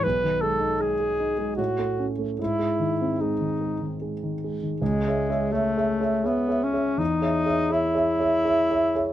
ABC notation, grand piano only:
X:1
M:3/4
L:1/16
Q:1/4=81
K:C#m
V:1 name="Grand piano"
B,,, D, G, D G, G D G, A,, A, C A, | G,, G, D, ^B, G, D, G, D, G, D, G, D, | (3C,,2 [Gce]2 [Gce]2 (3[Gce]2 [Gce]2 [Gce]2 (3[Gce]2 [Gce]2 [Gce]2 | (3E,,2 [Gce]2 [Gce]2 (3[Gce]2 [Gce]2 [Gce]2 (3[Gce]2 [Gce]2 [Gce]2 |]